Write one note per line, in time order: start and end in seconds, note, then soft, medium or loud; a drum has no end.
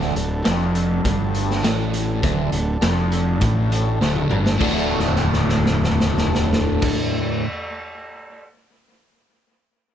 0.00 0.15 D1 loud
0.00 0.15 D2 medium
0.00 4.56 A3 medium
0.00 4.56 D4 medium
0.00 4.56 F#4 medium
0.00 4.56 A4 medium
0.00 snare soft
0.15 0.44 D1 medium
0.15 0.40 D2 medium
0.15 closed hi-hat medium
0.45 1.01 F1 medium
0.45 1.05 F2 loud
0.45 snare loud
0.45 closed hi-hat medium
0.75 closed hi-hat medium
1.04 1.60 G1 medium
1.04 1.63 G2 loud
1.04 kick loud
1.04 closed hi-hat medium
1.35 closed hi-hat medium
1.50 snare soft
1.63 2.19 A1 medium
1.63 2.22 A2 loud
1.63 snare loud
1.63 closed hi-hat medium
1.94 closed hi-hat medium
2.23 2.51 D1 medium
2.23 2.51 D2 medium
2.23 kick loud
2.23 closed hi-hat loud
2.52 2.80 D1 medium
2.52 2.77 D2 medium
2.52 closed hi-hat medium
2.81 3.37 F1 medium
2.81 3.41 F2 loud
2.81 snare loud
2.81 closed hi-hat loud
3.12 closed hi-hat medium
3.41 3.97 A1 medium
3.41 4.00 A2 loud
3.41 kick loud
3.41 closed hi-hat loud
3.72 closed hi-hat medium
4.01 4.29 D1 medium
4.01 4.29 D2 loud
4.01 snare medium
4.16 mid tom medium
4.29 4.58 G1 medium
4.29 4.57 G2 medium
4.29 mid tom medium
4.46 snare medium
4.58 6.89 D1 loud
4.58 7.44 D2 medium
4.58 7.44 A2 medium
4.58 7.44 D3 loud
4.58 6.89 F#3 medium
4.58 6.89 A3 medium
4.58 7.44 A3 medium
4.58 6.89 D4 medium
4.58 7.44 F#4 medium
4.58 6.89 A4 medium
4.58 kick loud
4.58 crash medium
4.91 floor tom soft
4.99 snare soft
5.08 floor tom medium
5.16 snare medium
5.25 floor tom medium
5.33 snare medium
5.41 floor tom medium
5.49 snare medium
5.57 floor tom medium
5.66 snare medium
5.74 floor tom medium
5.84 snare medium
5.92 floor tom medium
6.00 snare medium
6.10 floor tom medium
6.18 snare medium
6.27 floor tom medium
6.35 snare medium
6.44 floor tom medium
6.53 snare medium
6.82 kick loud
6.82 crash medium